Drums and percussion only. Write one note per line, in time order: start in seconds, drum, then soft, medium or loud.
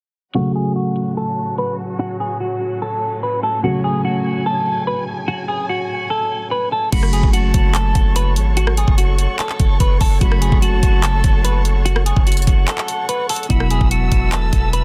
6.92 kick loud
6.92 closed hi-hat medium
6.92 crash loud
7.03 cross-stick loud
7.13 closed hi-hat medium
7.23 kick loud
7.33 closed hi-hat medium
7.54 kick loud
7.54 closed hi-hat medium
7.75 clap loud
7.75 closed hi-hat medium
7.95 kick loud
7.95 closed hi-hat medium
8.16 closed hi-hat medium
8.36 closed hi-hat medium
8.57 closed hi-hat medium
8.67 cross-stick loud
8.77 closed hi-hat medium
8.88 kick medium
8.98 closed hi-hat medium
9.19 closed hi-hat medium
9.39 clap loud
9.39 closed hi-hat medium
9.49 clap medium
9.60 kick loud
9.60 closed hi-hat medium
9.80 kick medium
9.80 closed hi-hat medium
10.01 kick medium
10.01 open hi-hat medium
10.21 kick loud
10.21 closed hi-hat medium
10.32 cross-stick loud
10.42 closed hi-hat medium
10.52 kick loud
10.62 closed hi-hat medium
10.83 kick loud
10.83 closed hi-hat medium
11.03 clap loud
11.03 closed hi-hat medium
11.24 kick loud
11.24 closed hi-hat medium
11.45 closed hi-hat medium
11.65 closed hi-hat medium
11.86 closed hi-hat medium
11.96 cross-stick loud
12.06 closed hi-hat medium
12.16 kick loud
12.27 closed hi-hat medium
12.32 closed hi-hat medium
12.37 closed hi-hat medium
12.42 closed hi-hat medium
12.47 kick loud
12.47 closed hi-hat medium
12.68 clap loud
12.68 closed hi-hat medium
12.78 clap medium
12.88 closed hi-hat medium
13.09 closed hi-hat medium
13.29 closed hi-hat medium
13.29 open hi-hat medium
13.36 closed hi-hat medium
13.43 closed hi-hat soft
13.50 kick loud
13.50 closed hi-hat medium
13.60 cross-stick loud
13.70 closed hi-hat medium
13.81 kick loud
13.91 closed hi-hat medium
14.12 kick loud
14.12 closed hi-hat medium
14.32 clap loud
14.32 closed hi-hat medium
14.53 kick loud
14.53 closed hi-hat medium
14.73 closed hi-hat medium